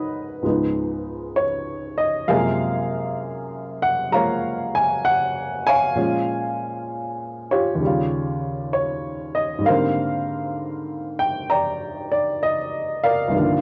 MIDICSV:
0, 0, Header, 1, 2, 480
1, 0, Start_track
1, 0, Tempo, 920245
1, 1189, Time_signature, 4, 2, 24, 8
1, 7100, End_track
2, 0, Start_track
2, 0, Title_t, "Grand piano"
2, 0, Program_c, 0, 0
2, 0, Control_c, 0, 64, 127
2, 0, Note_on_c, 0, 44, 47
2, 0, Note_on_c, 0, 54, 43
2, 0, Note_on_c, 0, 56, 43
2, 0, Note_on_c, 0, 59, 40
2, 0, Note_on_c, 0, 61, 51
2, 0, Note_on_c, 0, 63, 52
2, 0, Note_on_c, 0, 66, 51
2, 0, Note_on_c, 0, 70, 53
2, 0, Note_on_c, 0, 71, 70
2, 0, Note_on_c, 0, 73, 82
2, 0, Note_on_c, 0, 75, 75
2, 216, Note_off_c, 0, 66, 0
2, 217, Note_off_c, 0, 70, 0
2, 219, Note_off_c, 0, 44, 0
2, 221, Note_on_c, 0, 37, 42
2, 226, Note_off_c, 0, 56, 0
2, 227, Note_on_c, 0, 44, 39
2, 232, Note_off_c, 0, 54, 0
2, 232, Note_on_c, 0, 53, 38
2, 233, Note_off_c, 0, 59, 0
2, 234, Note_off_c, 0, 61, 0
2, 234, Note_on_c, 0, 56, 41
2, 236, Control_c, 0, 64, 0
2, 237, Note_off_c, 0, 63, 0
2, 239, Note_off_c, 0, 73, 0
2, 240, Note_off_c, 0, 75, 0
2, 241, Note_on_c, 0, 59, 42
2, 244, Note_on_c, 0, 63, 45
2, 319, Control_c, 0, 64, 127
2, 711, Note_on_c, 0, 73, 81
2, 739, Note_off_c, 0, 71, 0
2, 1011, Note_off_c, 0, 73, 0
2, 1031, Note_on_c, 0, 75, 74
2, 1067, Note_off_c, 0, 75, 0
2, 1183, Note_off_c, 0, 53, 0
2, 1183, Note_off_c, 0, 56, 0
2, 1186, Note_off_c, 0, 37, 0
2, 1189, Note_off_c, 0, 44, 0
2, 1189, Note_on_c, 0, 42, 54
2, 1190, Note_on_c, 0, 53, 45
2, 1190, Note_on_c, 0, 77, 85
2, 1191, Note_on_c, 0, 56, 45
2, 1194, Note_on_c, 0, 58, 50
2, 1196, Note_off_c, 0, 59, 0
2, 1196, Note_on_c, 0, 48, 59
2, 1197, Note_off_c, 0, 63, 0
2, 1197, Control_c, 0, 64, 0
2, 1200, Note_on_c, 0, 68, 67
2, 1200, Note_on_c, 0, 70, 65
2, 1280, Control_c, 0, 64, 127
2, 1971, Note_off_c, 0, 77, 0
2, 1994, Note_on_c, 0, 78, 88
2, 2134, Note_off_c, 0, 53, 0
2, 2134, Note_off_c, 0, 70, 0
2, 2135, Note_off_c, 0, 68, 0
2, 2140, Note_off_c, 0, 56, 0
2, 2140, Note_off_c, 0, 78, 0
2, 2142, Note_on_c, 0, 53, 39
2, 2148, Note_on_c, 0, 56, 36
2, 2150, Note_off_c, 0, 58, 0
2, 2151, Note_on_c, 0, 82, 81
2, 2158, Note_on_c, 0, 58, 45
2, 2159, Note_on_c, 0, 77, 67
2, 2163, Note_on_c, 0, 73, 65
2, 2477, Note_on_c, 0, 80, 87
2, 2482, Note_off_c, 0, 82, 0
2, 2632, Note_on_c, 0, 78, 89
2, 2638, Note_off_c, 0, 80, 0
2, 2704, Note_off_c, 0, 78, 0
2, 2955, Note_on_c, 0, 80, 103
2, 2956, Note_off_c, 0, 73, 0
2, 2958, Note_off_c, 0, 77, 0
2, 2964, Note_on_c, 0, 73, 66
2, 2966, Note_on_c, 0, 77, 66
2, 3102, Note_off_c, 0, 53, 0
2, 3105, Note_off_c, 0, 56, 0
2, 3105, Note_on_c, 0, 46, 46
2, 3110, Note_off_c, 0, 42, 0
2, 3110, Note_on_c, 0, 53, 44
2, 3112, Note_on_c, 0, 56, 42
2, 3114, Note_off_c, 0, 48, 0
2, 3114, Note_off_c, 0, 58, 0
2, 3114, Note_on_c, 0, 61, 52
2, 3118, Control_c, 0, 64, 0
2, 3203, Control_c, 0, 64, 127
2, 3893, Note_off_c, 0, 80, 0
2, 3897, Note_off_c, 0, 73, 0
2, 3898, Note_off_c, 0, 77, 0
2, 3918, Note_on_c, 0, 73, 73
2, 3923, Note_on_c, 0, 65, 57
2, 3925, Note_on_c, 0, 67, 57
2, 4043, Note_on_c, 0, 39, 54
2, 4065, Note_on_c, 0, 49, 48
2, 4068, Note_off_c, 0, 46, 0
2, 4070, Note_off_c, 0, 53, 0
2, 4072, Note_off_c, 0, 56, 0
2, 4072, Note_off_c, 0, 61, 0
2, 4077, Control_c, 0, 64, 0
2, 4081, Note_on_c, 0, 55, 49
2, 4095, Note_off_c, 0, 65, 0
2, 4102, Note_on_c, 0, 65, 59
2, 4164, Control_c, 0, 64, 127
2, 4547, Note_off_c, 0, 73, 0
2, 4555, Note_on_c, 0, 73, 78
2, 4854, Note_off_c, 0, 73, 0
2, 4858, Note_off_c, 0, 67, 0
2, 4876, Note_on_c, 0, 75, 77
2, 5000, Note_on_c, 0, 44, 49
2, 5006, Note_off_c, 0, 55, 0
2, 5014, Note_on_c, 0, 55, 44
2, 5017, Note_off_c, 0, 39, 0
2, 5028, Note_off_c, 0, 49, 0
2, 5031, Note_on_c, 0, 58, 41
2, 5037, Control_c, 0, 64, 0
2, 5038, Note_off_c, 0, 75, 0
2, 5039, Note_on_c, 0, 77, 82
2, 5044, Note_on_c, 0, 60, 45
2, 5046, Note_on_c, 0, 70, 61
2, 5047, Note_off_c, 0, 65, 0
2, 5048, Note_on_c, 0, 72, 64
2, 5059, Note_on_c, 0, 50, 58
2, 5128, Control_c, 0, 64, 127
2, 5838, Note_on_c, 0, 79, 77
2, 5861, Note_off_c, 0, 77, 0
2, 5978, Note_off_c, 0, 70, 0
2, 5979, Note_off_c, 0, 72, 0
2, 5996, Note_off_c, 0, 79, 0
2, 5997, Note_on_c, 0, 82, 75
2, 6002, Note_on_c, 0, 74, 57
2, 6003, Note_on_c, 0, 79, 57
2, 6311, Note_off_c, 0, 74, 0
2, 6319, Note_on_c, 0, 74, 74
2, 6325, Note_off_c, 0, 82, 0
2, 6463, Note_off_c, 0, 74, 0
2, 6482, Note_on_c, 0, 75, 80
2, 6553, Note_off_c, 0, 75, 0
2, 6800, Note_on_c, 0, 77, 91
2, 6804, Note_on_c, 0, 70, 59
2, 6804, Note_on_c, 0, 74, 61
2, 6927, Note_on_c, 0, 36, 46
2, 6936, Note_off_c, 0, 44, 0
2, 6937, Note_off_c, 0, 79, 0
2, 6939, Note_on_c, 0, 43, 47
2, 6943, Note_off_c, 0, 55, 0
2, 6949, Note_on_c, 0, 51, 43
2, 6952, Note_off_c, 0, 58, 0
2, 6958, Note_off_c, 0, 60, 0
2, 6959, Control_c, 0, 64, 0
2, 6960, Note_on_c, 0, 53, 43
2, 6966, Note_off_c, 0, 50, 0
2, 6972, Note_on_c, 0, 58, 45
2, 6985, Note_on_c, 0, 50, 58
2, 7066, Control_c, 0, 64, 127
2, 7100, Note_off_c, 0, 36, 0
2, 7100, Note_off_c, 0, 43, 0
2, 7100, Note_off_c, 0, 50, 0
2, 7100, Note_off_c, 0, 51, 0
2, 7100, Note_off_c, 0, 53, 0
2, 7100, Note_off_c, 0, 58, 0
2, 7100, Note_off_c, 0, 70, 0
2, 7100, Note_off_c, 0, 74, 0
2, 7100, Note_off_c, 0, 77, 0
2, 7100, End_track
0, 0, End_of_file